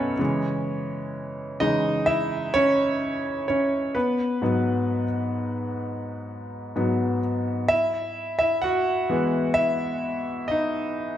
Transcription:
Already playing: B1 F#2 F#3 B3 C#4 D#4 A4 B4 C#5 D#5 E5 F#5 G#5 A5
0.19 C#3 E3 G#3
1.60 C#3 E3 G#3 D#4 D#5
2.06 E4 E5
2.54 C#4 C#5
3.48 C#4 C#5
3.95 B3 B4
4.42 G#2 F#3 B3
6.76 G#2 F#3 B3
7.68 E4 E5
8.39 E4 E5
8.62 F#4 F#5
9.09 E3 G#3 B3
9.54 E4 E5
10.48 D#4 D#5

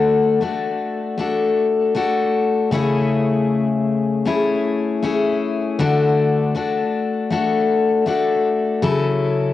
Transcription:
Already playing: D3 A3 D4 F#4 A4
0.41 A3 D4 F#4 A4
1.18 A3 D4 F#4 A4
1.95 A3 D4 F#4 A4
2.71 C#3 A3 C#4 E4 G#4
4.25 A3 C#4 E4 G#4
5.03 A3 C#4 E4 G#4
5.79 D3 A3 D4 F#4 A4
6.55 A3 D4 F#4 A4
7.30 A3 D4 F#4 A4
8.06 A3 D4 F#4 A4
8.82 C#3 F#3 C#4 E4 A4

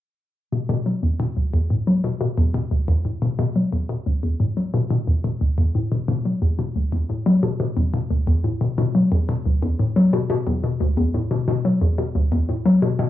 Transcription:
0.52 B2
0.69 B2
0.86 F#3
1.03 E2
1.20 B2
1.37 D2
1.54 E2
1.70 A2
1.87 F#3
2.04 B2
2.21 B2
2.38 E2
2.54 B2
2.71 D2
2.88 E2
3.05 A2
3.22 B2
3.39 B2
3.56 F#3
3.73 E2
3.89 B2
4.06 D2
4.23 E2
4.40 A2
4.57 F#3
4.74 B2
4.91 B2
5.08 E2
5.24 B2
5.41 D2
5.58 E2
5.75 A2
5.92 B2
6.08 B2
6.25 F#3
6.42 E2
6.59 B2
6.76 D2
6.92 E2
7.09 A2
7.26 F#3
7.43 B2
7.60 B2
7.77 E2
7.94 B2
8.10 D2
8.27 E2
8.44 A2
8.61 B2
8.78 B2
8.95 F#3
9.12 E2
9.29 B2
9.46 D2
9.63 E2
9.79 A2
9.96 F#3
10.13 B2
10.30 B2
10.47 E2
10.63 B2
10.80 D2
10.97 E2
11.14 A2
11.31 B2
11.48 B2
11.65 F#3
11.81 E2
11.98 B2
12.15 D2
12.32 E2
12.49 A2
12.66 F#3
12.82 B2
12.99 B2

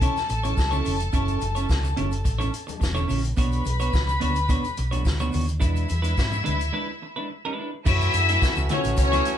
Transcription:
Already playing: A4 A5
0.01 C#4 E4 A4 C#5, kick, closed hi-hat, muted conga, shaker
0.17 muted clean electric guitar stroke, snare, closed hi-hat, muted conga, shaker
0.29 A1, muted clean electric guitar stroke, closed hi-hat, shaker
0.43 C#4 E4 A4 C#5, closed hi-hat, high conga, shaker
0.57 C#2, muted clean electric guitar stroke, kick, snare, muted conga, high conga, shaker
0.71 C#4 E4 A4 C#5, low conga, shaker
0.84 F1 C#4 E4 A4 C#5, open hi-hat, low conga, shaker
1.00 muted clean electric guitar stroke, closed hi-hat, shaker
1.13 F#1 C#4 E4 A4 C#5, kick, closed hi-hat, shaker
1.28 closed hi-hat, muted conga, shaker
1.40 F#1, muted clean electric guitar stroke, closed hi-hat, high conga, shaker
1.55 C#4 E4 A4 C#5, closed hi-hat, shaker
1.69 C#2, kick, snare, shaker
1.83 muted clean electric guitar stroke, closed hi-hat, muted conga, shaker
1.97 F#1 C#4 E4 A4 C#5, closed hi-hat, high conga, low conga
2.11 muted clean electric guitar stroke, closed hi-hat, shaker
2.24 A1, muted clean electric guitar stroke, kick, closed hi-hat, shaker
2.38 C#4 E4 A4 C#5, closed hi-hat, muted conga, shaker
2.52 muted clean electric guitar stroke, closed hi-hat, shaker
2.67 muted clean electric guitar stroke, closed hi-hat, high conga, shaker
2.80 E1, muted clean electric guitar stroke, kick, snare, muted conga, high conga, shaker
2.95 C#4 E4 A4 C#5, muted conga, low conga, shaker
3.08 A#1 C#4 E4 A4 C#5, open hi-hat, low conga, shaker
3.23 muted clean electric guitar stroke, closed hi-hat, shaker
3.37 B1 B3 D4 F#4 B4 C#5 B5, kick, closed hi-hat, shaker
3.52 closed hi-hat, muted conga, shaker
3.65 B1, muted clean electric guitar stroke, closed hi-hat, high conga, shaker
3.80 B3 D4 F#4 C#5, closed hi-hat, shaker
3.93 C#2, kick, snare, muted conga, shaker
4.07 muted clean electric guitar stroke, closed hi-hat, muted conga, shaker
4.20 D2 B3 D4 F#4 C#5, closed hi-hat, high conga, low conga
4.35 muted clean electric guitar stroke, closed hi-hat, shaker
4.49 B3 D4 F#4 C#5, kick, closed hi-hat, shaker
4.64 muted clean electric guitar stroke, closed hi-hat, muted conga, shaker
4.77 B1, muted clean electric guitar stroke, closed hi-hat, shaker
4.91 B3 D4 F#4 C#5, closed hi-hat, high conga, shaker
5.05 D2, kick, snare, muted conga, high conga, shaker
5.19 B3 D4 F#4 C#5, muted conga, low conga, shaker
5.32 D#2 B3 D4 F#4 C#5, open hi-hat, low conga, shaker
5.48 muted clean electric guitar stroke, closed hi-hat, shaker
5.60 E2 G#3 D4 E4 B4 E5, kick, closed hi-hat, shaker
5.76 closed hi-hat, shaker
5.88 E2, muted clean electric guitar stroke, closed hi-hat, high conga, shaker
6.02 G#3 D4 E4 B4, closed hi-hat, shaker
6.18 G#2, kick, snare, shaker
6.32 muted clean electric guitar stroke, muted conga, shaker
6.44 D2 G#3 D4 E4 B4, closed hi-hat, high conga, low conga
6.59 muted clean electric guitar stroke, closed hi-hat, shaker
6.73 G#3 D4 E4 B4
6.89 muted clean electric guitar stroke
7.02 muted clean electric guitar stroke
7.16 G#3 D4 E4 B4
7.30 muted clean electric guitar stroke
7.45 G#3 D4 E4 B4
7.58 G#3 D4 E4 B4
7.73 muted clean electric guitar stroke
7.85 F#2 E3 F#3 A3 C#4 E4 F#4 C#5 E5, kick, crash, shaker
8.01 closed hi-hat, shaker
8.13 F#2, muted clean electric guitar stroke, closed hi-hat, high conga, shaker
8.28 A3 E4 F#4 E5, closed hi-hat, shaker
8.42 muted clean electric guitar stroke, kick, snare, muted conga, shaker
8.56 C#2, muted clean electric guitar stroke, shaker
8.69 A3 C#4 E4 F#4 C#5 E5, closed hi-hat, low conga, shaker
8.84 A1 A3 E4 F#4 C#5, closed hi-hat, shaker
8.97 C#2 C#4 C#5, muted clean electric guitar stroke, kick, closed hi-hat, shaker
9.12 A3 E4 F#4 C#5, snare, closed hi-hat, shaker
9.25 A3 E4 F#4 E5, closed hi-hat, shaker

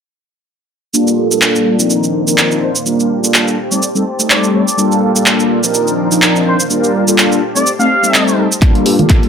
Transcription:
0.93 G3 A#3 D4 F4 A4 G5, shaker
1.08 shaker
1.30 G3 A#3 D4 F4 A4, shaker
1.42 clap, shaker
1.56 shaker
1.79 F3 C4 D4 D#4 A#4, shaker
1.89 D#3 C5 D5 F5, shaker
2.04 shaker
2.26 F3 C4 D4 D#4 A#4, shaker
2.38 clap, shaker
2.51 shaker
2.61 F3 C4 D4 D#4 A#4 C5
2.76 shaker
2.85 G3 A#3 D4 F4 G4 A#4 A5, shaker
3.00 shaker
3.22 G3 A#3 D4 F4 A4, shaker
3.34 clap, shaker
3.48 shaker
3.58 C5
3.71 G3 A3 C4 D#4 A4 D5, shaker
3.82 shaker
3.95 G3 A3 C4 D#4 A4, shaker
4.18 G3 A3 C4 D#4 A4, shaker
4.29 D5, clap, shaker
4.44 shaker
4.53 G3 A3 C4 D#4 A4 D5
4.68 shaker
4.77 G3 A#3 D4 F4 A4 F5, shaker
4.92 shaker
5.14 G3 A#3 D4 F4 A4, shaker
5.26 clap, shaker
5.40 shaker
5.63 F3 C4 D4 D#4 A#4, shaker
5.74 D#3 C5 D5 F5, shaker
5.87 shaker
6.11 F3 C4 D4 D#4 A#4, shaker
6.22 clap, shaker
6.36 shaker
6.46 F3 C4 D4 D#4 A#4 C5
6.60 shaker
6.69 G3 A#3 D4 F4 G4 A#4 A5, shaker
6.84 shaker
7.07 G3 A#3 D4 F4 A4, shaker
7.18 clap, shaker
7.32 shaker
7.41 C5 A5
7.55 G3 A3 C4 D#4 A4 D5, shaker
7.67 shaker
7.79 G3 A3 C4 D#4 A4 F5, shaker
8.02 G3 A3 C4 D#4 A4, shaker
8.14 clap, shaker
8.28 shaker
8.37 G3 A3 C4 D#4 A4
8.52 shaker
8.61 G1 G3 A#3 D4 F4 A4 A5, kick, clap, closed hi-hat
8.75 closed hi-hat
8.86 G2, open hi-hat
8.98 G3 A#3 D4 F4 A4, muted fingered electric bass stroke, closed hi-hat, tambourine, high conga, low conga
9.09 G1, kick, clap, closed hi-hat
9.23 closed hi-hat

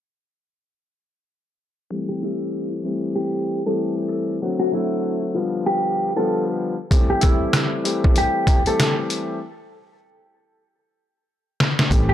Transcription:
1.90 E3 G3 A3 C4 G4
2.09 G4
2.22 E3 G3 A3 C4 E4 G4
2.83 E3 G3 A3 C4 G4
3.16 G4
3.66 E3 G3 A3 C4 G4 A4
4.41 D3 F#3 A3 C4 F#4
4.59 F#4
4.72 D3 F#3 A3 C4 E4 F#4
5.34 D3 F3 G3 B3 F4
5.66 G4
6.16 D3 F3 G3 B3 F4 A4
6.90 E3 G3 A3 C4 G4, kick, closed hi-hat
7.10 G4
7.21 E3 G3 A3 C4 E4 G4, kick, closed hi-hat
7.53 cross-stick, snare, closed hi-hat
7.83 E3 G3 A3 C4 G4, closed hi-hat
8.04 kick
8.16 G4, closed hi-hat
8.47 kick, closed hi-hat
8.65 E3 G3 A3 C4 G4 A4, closed hi-hat
8.80 cross-stick, snare, closed hi-hat
9.10 closed hi-hat
11.60 snare
11.79 snare
11.90 A1 E3 G3 A3 C4 G4, kick, closed hi-hat
12.09 G4

